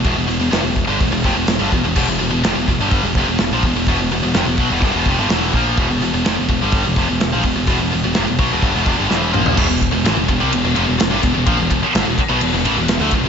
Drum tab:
CC |----------------|x---------------|----------------|----------------|
RD |----------------|----------------|----------------|----------------|
HH |o-o-o-o-o-o-o-o-|--o-o-o-o-o-o-o-|o-o-o-o-o-o-o-o-|o-o-o-o-o-o-o-o-|
SD |----o-------o---|----o-------o---|----o-------o---|----o-------o---|
T2 |----------------|----------------|----------------|----------------|
FT |----------------|----------------|----------------|----------------|
BD |o-----o-o-o---o-|o-----o-o-o---o-|o-----o-o-o---o-|o-----o-o-o---o-|

CC |----------------|x---------------|----------------|
RD |----------------|--x-x-x-x-x-x-x-|x-x-x-x-x-x-x-x-|
HH |o-o-o-o-o-o-----|----------------|----------------|
SD |----o-------o---|----o-------o-o-|----o-------o-o-|
T2 |--------------o-|----------------|----------------|
FT |---------------o|----------------|----------------|
BD |o-----o-o-o-----|o-o---o-------o-|o-o---o-------o-|